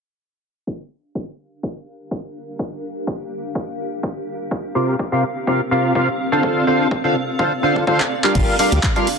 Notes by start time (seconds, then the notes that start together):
0.67 D4, kick
0.79 F5
0.88 G4
0.97 A#4
1.15 kick
1.63 kick
2.11 kick
2.59 kick
3.07 kick
3.55 kick
4.03 kick
4.27 C4
4.51 kick
4.75 C3 C4 F4 G4 A#4 F5
4.99 kick
5.12 C3 C4 F4 G4 A#4 F5
5.47 C3 C4 F4 G4 A#4 F5, kick
5.71 C3 C4 F4 G4 A#4 F5
5.95 C3 C4 F4 G4 A#4 F5, kick
6.32 D3 D4 F4 A4 C5 F5
6.43 kick
6.61 A4
6.67 D3 D4 F4 A4 C5 F5
6.90 D5, kick
7.04 D3 D4 F4 A4 C5 F5
7.39 D3 D4 F4 A4 C5 F5, kick
7.63 D3 D4 F4 A4 C5 F5
7.76 kick
7.87 D3 D4 F4 A4 C5 F5, kick
8.00 clap
8.24 G3 D4 F4 G4 A#4 F5, clap
8.35 G1 D4, kick, closed hi-hat, crash
8.59 G3 D4 F4 G4 A#4 F5, open hi-hat
8.67 A#4
8.72 D2, closed hi-hat
8.83 kick, clap, closed hi-hat
8.96 G3 D4 F4 G4 A#4 F5, closed hi-hat
9.07 open hi-hat